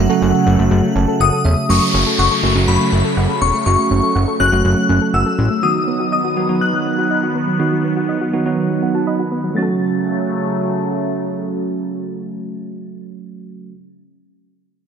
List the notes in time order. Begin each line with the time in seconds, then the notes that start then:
Already playing: C#3 F#3 A3 F#5
0.10 F#3 A3 C#4 F#4 A4
0.22 F#1 F#5
0.34 A4
0.46 F#1 C#4
0.59 F#1 A3
0.71 F#1 F#3
0.96 F#1 C#4 A5
1.08 A4
1.20 F#1 F#5 D#6
1.33 A4
1.45 E1 C#4 E5
1.57 A3
1.69 F#1 C#3 F#3 A3 C#4 F#4 C#6, downlifter
1.82 A3
1.94 F#1 C#4
2.06 A4
2.19 F#1 F#5 C#6
2.31 A4
2.43 F#1 F#3 A3 C#4 F#4
2.56 F#1 F#3 A3 C#4 F#4
2.68 F#1 F#3 B5
2.80 A3
2.92 F#1 C#4
3.05 A4
3.17 F#1 F#5
3.29 A4
3.42 E1 C#4 C#6
3.54 A3
3.66 F#1 F#3 A3 C#4 F#4 C#6
3.79 A3
3.91 F#1 C#4
4.03 A4
4.15 F#1 F#5
4.28 A4
4.40 F#1 F#3 A3 C#4 F#4 F#6
4.52 F#1 F#3 A3 C#4 F#4
4.65 F#1 F#3
4.77 A3
4.89 F#1 C#4
5.01 A4
5.14 F#1 F#5 E6
5.26 A4
5.38 A1 C#4
5.51 A3
5.63 D#3 F#3 B3 D#4 F#4 D#6
5.75 F#3
5.88 B3
6.00 F#4
6.12 D#5 D#6
6.25 F#4
6.37 F#3 B3 D#4 F#4
6.49 F#3 B3 D#4 F#4
6.61 D#3 F#6
6.74 F#3
6.86 B3
6.98 F#4
7.11 D#5
7.23 F#4
7.35 B3
7.47 F#3
7.60 D#3 F#3 B3 D#4 F#4
7.72 F#3
7.84 B3
7.96 F#4
8.09 D#5
8.21 F#4
8.33 F#3 B3 D#4 F#4
8.46 F#3 B3 D#4 F#4
8.58 D#3
8.70 F#3
8.82 B3 F#5
8.95 F#4 A5
9.07 D#5 B5
9.19 F#4
9.32 B3
9.44 F#3
9.50 F#3 A3
9.56 C#3 F#3 A3 C#4 F#4 A6
9.62 A4